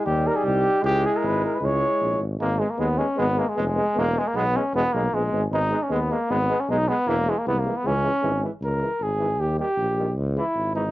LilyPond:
<<
  \new Staff \with { instrumentName = "Euphonium" } { \time 2/4 \tempo 4 = 154 dis'2 | e'2 | e'4. r8 | b8 b8 b8 b8 |
b8 b8 b8 b8 | b8 b8 b8 b8 | b8 b8 b8 b8 | b8 b8 b8 b8 |
b8 b8 b8 b8 | gis8 gis8 gis8 gis8 | gis8 gis8 gis8 gis8 | r8 gis8 r8 gis8 |
r8 g8 r8 g8 | r8 gis8 r8 gis8 | }
  \new Staff \with { instrumentName = "Trumpet" } { \time 2/4 g'8 ais'16 gis'16 g'4 | g'8 gis'16 ais'16 b'8 ais'16 b'16 | cis''4. r8 | ais8 gis16 ais16 b8 cis'8 |
b8 ais16 gis16 gis4 | ais8 gis16 ais16 b8 cis'8 | b8 ais8 gis8. r16 | dis'8. cis'16 b8 ais8 |
b8. cis'16 dis'8 b8 | ais8 gis16 ais16 b16 ais8 b16 | cis'4. r8 | ais'4 gis'4 |
g'8 g'4. | r8 e'4 dis'8 | }
  \new Staff \with { instrumentName = "Trombone" } { \clef bass \time 2/4 g2 | gis2 | gis4. r8 | gis8 gis8 gis8 gis8 |
gis8 gis8 gis8 gis8 | gis8 gis8 gis8 gis8 | gis8 gis8 gis8 gis8 | gis8 gis8 gis8 gis8 |
gis8 gis8 gis8 gis8 | e8 e8 e8 e8 | e8 e8 e8 e8 | r8 e8 r8 e8 |
r8 dis8 r8 dis8 | r8 e8 r8 e8 | }
  \new Staff \with { instrumentName = "Tuba" } { \clef bass \time 2/4 dis,4 bis,,4 | cis,4 gis,,4 | cis,4 ais,,8 gis,,8 | gis,,4 dis,4 |
gis,,4 eis,,4 | e,,4 b,,4 | e,,8 b,,8 ais,,8 gis,,8 | gis,,4 dis,4 |
gis,,4 b,,4 | e,,4 bis,,4 | cis,4 gis,,4 | cis,4 gis,,4 |
dis,4 ais,,4 | cis,4 gis,,4 | }
>>